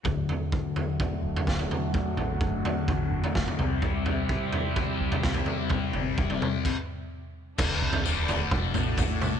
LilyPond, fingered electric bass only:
\new Staff \with { instrumentName = "Fingered electric bass" } { \clef bass \time 4/4 \key d \mixolydian \tempo 4 = 127 d,,8 r2 d,,16 r16 d,,8 r8 | r8 a,,8 fis,,8 r8 a,,8 fis,,16 r16 fis,,16 r16 c,8~ | c,4. r4 c,16 r16 c,8 r8 | r8 g,,8 e,,8 r2 r8 |
d,,8 c,8 d,,4 f,,8 a,,4. | }